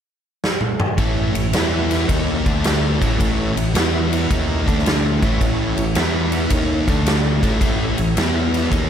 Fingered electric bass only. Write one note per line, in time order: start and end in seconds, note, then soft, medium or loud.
0.98 1.33 A1 loud
1.35 1.52 A1 medium
1.53 2.05 E2 medium
2.09 2.44 D#2 loud
2.46 2.97 D2 medium
3.02 3.19 A1 medium
3.20 3.54 A1 medium
3.57 3.74 A1 medium
3.75 4.27 E2 medium
4.31 4.65 D#2 medium
4.68 5.19 D2 loud
5.23 5.40 A1 medium
5.41 5.75 A1 loud
5.78 5.95 A1 medium
5.96 6.47 E2 medium
6.51 6.85 D#2 loud
6.88 7.39 D2 medium
7.43 7.60 A1 medium
7.61 7.95 A1 loud
7.99 8.16 A1 medium
8.18 8.68 E2 medium
8.72 8.90 D#2 loud